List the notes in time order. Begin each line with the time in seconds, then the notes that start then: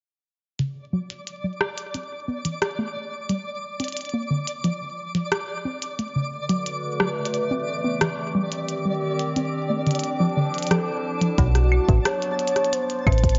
0.59 C#3 D5, closed hi-hat
0.93 F#3
1.10 closed hi-hat
1.27 closed hi-hat
1.44 F#3
1.61 cross-stick
1.78 closed hi-hat
1.94 C4, closed hi-hat
2.28 B3
2.45 E3, closed hi-hat
2.62 cross-stick, closed hi-hat
2.79 A3
3.29 G3, closed hi-hat
3.80 C4, closed hi-hat
3.84 closed hi-hat
3.88 closed hi-hat
3.93 closed hi-hat
3.97 closed hi-hat
4.01 closed hi-hat
4.05 closed hi-hat
4.09 closed hi-hat
4.14 A#3
4.30 D3
4.47 closed hi-hat
4.64 F3, closed hi-hat
5.15 F3, closed hi-hat
5.32 cross-stick, closed hi-hat
5.65 C4
5.82 closed hi-hat
5.99 D3 A3, closed hi-hat
6.16 C#3
6.26 B4
6.45 A3 F#4
6.50 F#3, closed hi-hat
6.60 C#3
6.67 closed hi-hat
7.00 F#3, cross-stick
7.25 closed hi-hat
7.34 E3, closed hi-hat
7.51 C4
7.68 G4
7.84 B3
8.01 E3, cross-stick, closed hi-hat
8.35 D#3 G3
8.52 closed hi-hat
8.69 closed hi-hat
8.85 G3
8.92 A#4
8.96 D4
9.19 closed hi-hat
9.36 C4, closed hi-hat
9.70 F3 A3
9.86 D3, closed hi-hat
9.91 closed hi-hat
9.95 closed hi-hat
9.99 closed hi-hat
10.03 closed hi-hat
10.09 A5
10.20 F3
10.34 D3 E4
10.54 closed hi-hat
10.58 closed hi-hat
10.62 closed hi-hat
10.67 closed hi-hat
10.71 F3 A4, cross-stick, closed hi-hat
11.21 F3, closed hi-hat
11.38 B1 F#3 F#4 A5, kick, closed hi-hat
11.55 cross-stick, closed hi-hat
11.72 B3, claves
11.89 A1, kick, closed hi-hat
12.06 C#5, cross-stick, closed hi-hat
12.22 closed hi-hat
12.39 closed hi-hat
12.48 closed hi-hat
12.56 cross-stick, closed hi-hat
12.65 closed hi-hat
12.73 G3 C5, closed hi-hat
12.90 closed hi-hat
13.07 A1 C4, kick, closed hi-hat, claves
13.12 closed hi-hat
13.18 E4, closed hi-hat
13.24 kick, closed hi-hat
13.29 closed hi-hat
13.35 closed hi-hat